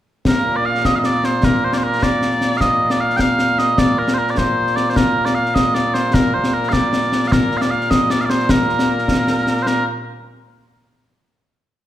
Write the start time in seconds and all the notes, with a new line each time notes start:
0.25 A#2 A#3 A#4, concert bass drum, snare
0.56 D5
0.66 F5
0.75 snare
0.85 D#5, concert bass drum, snare
0.96 D#5 F5
1.04 D5, snare
1.24 C5, snare
1.43 A#4, concert bass drum, snare
1.64 C5
1.73 D5, snare
1.78 C5
1.83 A#4
1.92 snare
2.03 D5, concert bass drum, snare
2.22 snare
2.31 snare
2.41 snare
2.57 D#5 F5, concert bass drum, snare
2.90 D5, snare
3.01 F5
3.10 snare
3.16 G5, concert bass drum, snare
3.20 F5
3.39 snare
3.59 D#5, snare
3.78 D5, concert bass drum, snare
3.99 A#4
4.08 snare
4.14 C5
4.18 A#4
4.27 D5, snare
4.37 C5, concert bass drum, snare
4.67 snare
4.76 D5, snare
4.90 C5
4.96 A#4, concert bass drum, snare
5.25 D5, snare
5.35 F5
5.46 snare
5.55 D#5, concert bass drum, snare
5.74 D5, snare
5.94 C5, snare
6.14 A#4, concert bass drum, snare
6.34 C5
6.44 snare
6.53 A#4
6.63 snare
6.69 D5 F5
6.73 concert bass drum, snare
6.93 snare
7.03 snare
7.12 snare
7.28 F5
7.32 A#4, concert bass drum, snare
7.51 snare
7.57 F5, snare
7.62 D5
7.71 F5
7.81 snare
7.91 D#5, concert bass drum, snare
8.10 D5, snare
8.20 F5, snare
8.25 D5
8.30 C5, snare
8.40 snare
8.49 A#4, concert bass drum, snare
8.69 snare
8.79 snare
8.98 snare
9.08 concert bass drum, snare
9.27 snare
9.37 snare
9.47 snare
9.57 snare
9.62 C5
9.67 A#4, snare